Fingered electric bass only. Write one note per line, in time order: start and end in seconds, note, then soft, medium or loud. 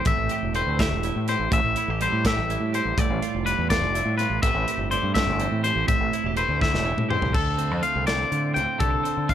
0.06 0.15 A1 medium
0.17 0.27 A1 medium
0.43 0.61 E1 medium
0.67 0.92 D2 medium
0.91 1.09 E1 loud
1.16 1.34 A2 medium
1.39 1.49 A1 medium
1.52 1.61 A1 medium
1.64 1.73 A1 medium
1.88 2.07 A1 medium
2.12 2.39 A2 medium
2.37 2.55 A1 loud
2.61 2.79 A2 medium
2.85 2.95 A1 medium
2.97 3.07 A1 loud
3.10 3.19 A1 loud
3.34 3.53 F1 medium
3.58 3.83 E2 medium
3.82 4.00 F1 loud
4.06 4.24 A2 medium
4.30 4.39 A1 medium
4.43 4.52 A1 loud
4.54 4.64 A1 loud
4.77 4.97 G1 medium
5.03 5.28 G2 medium
5.27 5.46 G1 loud
5.52 5.70 A2 medium
5.76 5.85 A1 medium
5.88 5.98 A1 medium
6.00 6.10 A1 medium
6.24 6.43 E1 medium
6.49 6.75 D2 medium
6.74 6.92 E1 loud
6.97 7.16 A2 medium
7.22 7.31 C2 medium
7.34 7.71 D2 medium
7.71 7.81 F2 medium
7.95 8.23 C2 medium
8.32 8.58 D3 medium
8.56 8.66 D2 medium
8.80 8.99 C2 medium
9.17 9.34 D3 medium